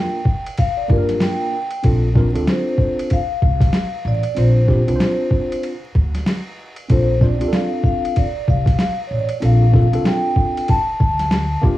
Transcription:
Already playing: tine electric piano A#3 D4 F4 A#4, vibraphone G5
0.25 kick
0.46 ride
0.57 vibraphone F5, kick, ride
0.77 vibraphone D5
0.88 upright bass G2, tine electric piano A#3 D4 F4 G4, vibraphone A#4, kick
0.98 tine electric piano A#4
1.09 snare, ride
1.20 vibraphone G5, snare, hi-hat pedal, ride
1.70 ride
1.83 upright bass A#1, tine electric piano C4 D4 F4 A4, kick, ride
2.14 tine electric piano C4 D4 F4 A#4, kick, snare
2.33 upright bass D2, tine electric piano C4 D4 F4 A4, ride
2.48 vibraphone C5, snare, hi-hat pedal, ride
2.78 kick
2.99 ride
3.10 vibraphone F5, kick, ride
3.42 upright bass C2, kick
3.60 kick, snare, ride
3.73 snare, hi-hat pedal, ride
4.05 upright bass A1, vibraphone D5
4.23 ride
4.35 upright bass A#1, tine electric piano C4 D4 F4 C5, vibraphone C5, ride
4.66 tine electric piano C4 D4 F4 G4, kick, snare
4.86 upright bass C2, tine electric piano C4 D4 F4 B4, ride
4.96 tine electric piano C5
5.00 snare, hi-hat pedal, ride
5.31 kick
5.52 ride
5.63 ride
5.95 upright bass D2, kick
6.14 snare, ride
6.26 snare, hi-hat pedal, ride
6.76 ride
6.88 upright bass A#1, tine electric piano C4 D4 F4 A4, vibraphone C5, kick, ride
7.20 tine electric piano C4 D4 F4 C5, vibraphone D5, kick, snare
7.39 upright bass D2, tine electric piano C4 D4 F4 G4, ride
7.48 tine electric piano A4
7.53 vibraphone F5, snare, hi-hat pedal, ride
7.83 vibraphone F5, kick
8.05 ride
8.16 vibraphone D5, kick, ride
8.48 upright bass C2, vibraphone F5, kick
8.66 kick, snare, ride
8.79 vibraphone F5, snare, hi-hat pedal, ride
9.07 upright bass A1, vibraphone C#5
9.14 vibraphone D5
9.29 ride
9.40 upright bass A#1, tine electric piano C4 D4 F4 A4, ride
9.45 vibraphone F5
9.72 tine electric piano C4 D4 F4 A4, kick, snare
9.92 upright bass C2, tine electric piano C4 D4 F4 A4, ride
10.05 vibraphone G5, snare, hi-hat pedal, ride
10.36 kick
10.57 ride
10.68 vibraphone A5, kick, ride
11.00 upright bass D2, kick
11.19 snare, ride
11.31 snare, hi-hat pedal, ride
11.62 upright bass D#2, tine electric piano A#3 D4 F4 G4, kick

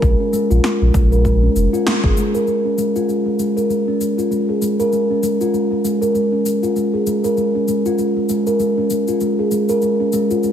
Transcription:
0.02 sub bass A#1, steel tongue drum G#3, kick, cabasa
0.20 steel tongue drum C#4
0.33 steel tongue drum G#3, cabasa
0.50 sub bass A#1, steel tongue drum F4, cabasa
0.64 steel tongue drum G#3, snare, cabasa
0.81 sub bass A#1, steel tongue drum G#3
0.94 sub bass A#1, steel tongue drum G#3, kick, cabasa
1.12 steel tongue drum A#4, cabasa
1.25 steel tongue drum G#3, kick, cabasa
1.43 steel tongue drum C#4
1.55 sub bass F1, steel tongue drum G#3, cabasa
1.73 steel tongue drum F4, cabasa
1.86 steel tongue drum G#3, snare, cabasa
2.04 sub bass G#1, steel tongue drum G#4, kick
2.17 steel tongue drum G#3, cabasa
2.35 steel tongue drum A#4, cabasa
2.47 steel tongue drum G#3, cabasa
2.65 steel tongue drum C#4
2.78 steel tongue drum G#3, cabasa
2.96 steel tongue drum F4, cabasa
3.09 steel tongue drum G#3, cabasa
3.26 steel tongue drum G#3
3.39 steel tongue drum G#3, cabasa
3.57 steel tongue drum A#4, cabasa
3.70 steel tongue drum G#3, cabasa
3.88 steel tongue drum C#4
4.01 steel tongue drum G#3, cabasa
4.18 steel tongue drum F4, cabasa
4.31 steel tongue drum G#3, cabasa
4.49 steel tongue drum G#4
4.62 steel tongue drum G#3, cabasa
4.80 steel tongue drum A#4, cabasa
4.92 steel tongue drum G#3, cabasa
5.10 steel tongue drum C#4
5.23 steel tongue drum G#3, cabasa
5.41 steel tongue drum F4, cabasa
5.54 steel tongue drum G#3, cabasa
5.71 steel tongue drum G#3
5.85 steel tongue drum G#3, cabasa
6.02 steel tongue drum A#4, cabasa
6.15 steel tongue drum G#3, cabasa
6.32 steel tongue drum C#4
6.45 steel tongue drum G#3, cabasa
6.63 steel tongue drum F4, cabasa
6.76 steel tongue drum G#3, cabasa
6.94 steel tongue drum G#4
7.07 steel tongue drum G#3, cabasa
7.24 steel tongue drum A#4, cabasa
7.37 steel tongue drum G#3, cabasa
7.55 steel tongue drum C#4
7.68 steel tongue drum G#3, cabasa
7.86 steel tongue drum F4, cabasa
7.98 steel tongue drum G#3, cabasa
8.17 steel tongue drum G#3
8.29 steel tongue drum G#3, cabasa
8.47 steel tongue drum A#4, cabasa
8.60 steel tongue drum G#3, cabasa
8.78 steel tongue drum C#4
8.90 steel tongue drum G#3, cabasa
9.08 steel tongue drum F4, cabasa
9.20 steel tongue drum G#3, cabasa
9.39 steel tongue drum G#4
9.51 steel tongue drum G#3, cabasa
9.69 steel tongue drum A#4, cabasa
9.82 steel tongue drum G#3, cabasa
10.00 steel tongue drum C#4
10.12 steel tongue drum G#3, cabasa
10.31 steel tongue drum F4, cabasa
10.43 steel tongue drum G#3, cabasa

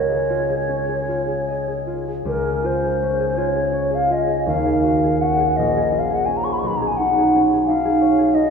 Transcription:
Already playing: harp C#2 C#4 D#5, flute C#5
0.10 harp G#4
0.30 harp F4
0.49 harp G#4
0.69 harp C#4
0.89 harp G#4
1.09 harp F4
1.28 harp G#4
1.48 harp D#5
1.68 harp G#4
1.87 harp F4
2.08 harp G#4
2.25 harp C#2, flute A#4
2.45 harp G#4
2.64 harp F4, flute C5
2.84 harp G#4
3.03 harp C#4
3.20 harp G#4
3.37 harp F4, flute C#5
3.55 harp G#4
3.73 harp C#5
3.91 harp G#4, flute F5
4.10 harp F4, flute D#5
4.27 harp G#4
4.47 harp D#2, flute F5
4.66 harp G#4
4.84 harp F#4
5.04 harp G#4
5.21 harp C#4, flute F#5
5.40 harp G#4
5.57 harp A#1, flute D#5
5.77 harp G#4
5.92 harp F4
5.99 flute F5
6.11 harp G#4, flute F#5
6.25 harp C#4, flute G#5
6.37 flute A#5
6.44 harp G#4, flute C#6
6.53 flute B5
6.59 flute C#6
6.63 harp B1, flute B5
6.76 flute A#5
6.82 harp G#4
6.87 flute G#5
6.97 harp D#4, flute F#5
7.18 harp G#4
7.36 harp C#4
7.53 harp G#4
7.67 harp D#4, flute F5
7.85 harp G#4
8.01 harp C#5
8.19 harp G#4
8.34 harp D#4, flute D#5

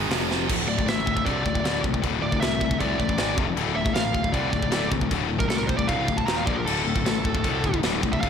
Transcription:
Already playing: distorted electric guitar G#3
0.09 picked electric bass F1, distorted electric guitar F2 C3 F3, snare, open hi-hat
0.31 snare
0.47 picked electric bass D1, distorted electric guitar D2 A2 D3, kick, crash, china
0.67 picked electric bass D1, distorted electric guitar D2 A2, lead electric guitar D5
0.78 distorted electric guitar D2 A2, kick
0.85 picked electric bass A1, distorted electric guitar D2 A2, lead electric guitar E5, snare, china
1.06 picked electric bass D1, distorted electric guitar D2 A2, kick
1.16 distorted electric guitar D2 A2, kick
1.25 picked electric bass C2, distorted electric guitar D2 A2 D3, lead electric guitar D5, kick, china
1.44 picked electric bass D1, distorted electric guitar D2 A2, kick
1.54 distorted electric guitar D2 A2, kick
1.63 picked electric bass D1, distorted electric guitar D2 A2 D3, snare, china
1.83 picked electric bass C2, distorted electric guitar D2 A2, kick
1.94 distorted electric guitar D2 A2, kick
2.02 picked electric bass D1, distorted electric guitar D2 A2 D3, kick, china
2.21 picked electric bass D1, distorted electric guitar D2 A2, lead electric guitar D5
2.32 distorted electric guitar D2 A2, kick
2.41 picked electric bass C2, distorted electric guitar D2 A2, lead electric guitar E5, snare, china
2.61 distorted electric guitar D2 A2, kick
2.71 distorted electric guitar D2 A2, kick
2.80 picked electric bass C2, distorted electric guitar D2 A2 D3, lead electric guitar D5, kick, china
2.99 picked electric bass A1, distorted electric guitar D2 A2, kick
3.08 distorted electric guitar D2 A2, kick
3.18 picked electric bass G#1, distorted electric guitar G#2 D#3 G#3, snare, china
3.37 picked electric bass F1, distorted electric guitar F2 C3 F3, kick
3.48 distorted electric guitar F2 C3
3.56 picked electric bass D1, distorted electric guitar D2 A2 D3, china
3.74 picked electric bass D1, distorted electric guitar D2 A2, lead electric guitar E5
3.85 distorted electric guitar D2 A2, kick
3.93 picked electric bass A1, distorted electric guitar D2 A2, lead electric guitar F5, snare, china
4.13 picked electric bass D1, distorted electric guitar D2 A2, kick
4.23 distorted electric guitar D2 A2, kick
4.32 picked electric bass C2, distorted electric guitar D2 A2 D3, lead electric guitar D5, kick, china
4.52 picked electric bass D1, distorted electric guitar D2 A2, kick
4.62 distorted electric guitar D2 A2, kick
4.70 picked electric bass D1, distorted electric guitar D2 A2 D3, snare, china
4.91 picked electric bass C2, distorted electric guitar D2 A2, kick
5.01 distorted electric guitar D2 A2, kick
5.11 picked electric bass D1, distorted electric guitar D2 A2 D3, kick, china
5.28 picked electric bass D1, distorted electric guitar D2 A2
5.38 distorted electric guitar D2 A2, lead electric guitar A#4, kick
5.48 picked electric bass C2, distorted electric guitar D2 A2, lead electric guitar A4, snare, china
5.58 lead electric guitar A#4
5.67 distorted electric guitar D2 A2, lead electric guitar C5, kick
5.77 distorted electric guitar D2 A2, lead electric guitar D5, kick
5.87 picked electric bass C2, distorted electric guitar D2 A2 D3, lead electric guitar F5, kick, china
6.07 picked electric bass D1, distorted electric guitar D2 A2, kick
6.17 distorted electric guitar D2 A2, lead electric guitar A5, kick
6.26 picked electric bass D#1, distorted electric guitar D#2 A#2 D#3, lead electric guitar A#5, snare, china
6.36 lead electric guitar F5
6.46 picked electric bass A#1, distorted electric guitar A#2 F3 A#3, lead electric guitar D5, kick
6.56 distorted electric guitar A#2 F3, lead electric guitar A#4
6.66 picked electric bass D1, distorted electric guitar D2 A2 D3, lead electric guitar A4, china, crash
6.85 picked electric bass D1, distorted electric guitar D2 A2
6.95 distorted electric guitar D2 A2, kick
7.04 picked electric bass A1, distorted electric guitar D2 A2, snare, china
7.24 picked electric bass D1, distorted electric guitar D2 A2, kick
7.35 distorted electric guitar D2 A2, kick
7.44 picked electric bass C2, distorted electric guitar D2 A2 D3, kick, china
7.64 picked electric bass D1, distorted electric guitar D2 A2, kick
7.73 distorted electric guitar D2 A2, kick
7.82 picked electric bass D1, distorted electric guitar D2 A2 D3, snare, china
8.03 picked electric bass C2, distorted electric guitar D2 A2, kick
8.12 distorted electric guitar D2 A2, lead electric guitar E5, kick
8.21 picked electric bass D1, distorted electric guitar D2 A2 D3, lead electric guitar F5, kick, china

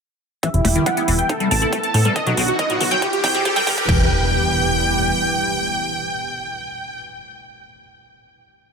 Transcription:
0.43 acid bass E3, analog synth pad E3 G3 B3 G4, supersaw synth E5, synth pluck E5, kick, closed hi-hat, riser
0.54 analog synth bass E1, synth pluck E4, supersaw synth E4, closed hi-hat
0.65 analog synth bass E1, acid bass A3, synth pluck E4, supersaw synth E4, kick, open hi-hat
0.75 acid bass D#3, supersaw synth E4, synth pluck E4, closed hi-hat
0.86 acid bass G3, synth pluck F#5, supersaw synth F#5, kick, closed hi-hat
0.97 acid bass B3, synth pluck E4, supersaw synth E4, closed hi-hat
1.08 analog synth bass E1, acid bass E3, synth pluck E4, supersaw synth E4, open hi-hat
1.19 synth pluck G5, supersaw synth G5, closed hi-hat
1.29 analog synth pad C3 A3 E4, acid bass D#4, synth pluck A4, supersaw synth A4, kick, closed hi-hat
1.40 acid bass G3, supersaw synth A4, synth pluck A4, closed hi-hat
1.51 analog synth bass A1, acid bass C4, supersaw synth A5, synth pluck A5, open hi-hat
1.62 acid bass E4, supersaw synth A4, synth pluck A4, closed hi-hat
1.73 acid bass A3, supersaw synth A4, synth pluck A4, kick, closed hi-hat
1.83 supersaw synth A5, synth pluck A5, closed hi-hat
1.94 analog synth bass A2, acid bass D#4, supersaw synth A4, synth pluck A4, open hi-hat
2.05 acid bass G3, supersaw synth A4, synth pluck A4, closed hi-hat
2.16 acid bass D#3, analog synth pad D#3 F#3 F#4, supersaw synth D#5, synth pluck D#5, kick, closed hi-hat
2.26 analog synth bass B1, acid bass F#3, supersaw synth F#4, synth pluck F#4, closed hi-hat
2.37 analog synth bass B1, acid bass B2, supersaw synth F#4, synth pluck F#4, open hi-hat
2.48 supersaw synth F#4, synth pluck F#4, closed hi-hat
2.59 acid bass D#3, synth pluck D#5, supersaw synth D#5, kick, closed hi-hat
2.70 acid bass A2, supersaw synth F#4, synth pluck F#4, closed hi-hat
2.80 analog synth bass B1, acid bass D#3, supersaw synth F#4, synth pluck F#4, open hi-hat
2.91 acid bass F#3, supersaw synth G5, synth pluck G5, closed hi-hat
3.02 acid bass C3, analog synth pad E3 G3 C4 G4, supersaw synth G4, synth pluck G4, kick, closed hi-hat
3.13 supersaw synth G4, synth pluck G4, closed hi-hat
3.24 analog synth bass C2, acid bass F#3, supersaw synth G5, synth pluck G5, kick, open hi-hat
3.34 acid bass B2, supersaw synth G4, synth pluck G4, closed hi-hat
3.45 acid bass E3, synth pluck G4, supersaw synth G4, kick, closed hi-hat
3.56 acid bass G3, supersaw synth G5, synth pluck G5, kick, closed hi-hat
3.67 analog synth bass G1, acid bass C3, supersaw synth G4, synth pluck G4, kick, open hi-hat
3.78 supersaw synth G4, synth pluck G4, kick, closed hi-hat
3.88 analog synth bass E1, acid bass E3, analog synth pad E3 G3 B3 G4, supersaw synth G5, synth pluck G5, kick, crash, impact

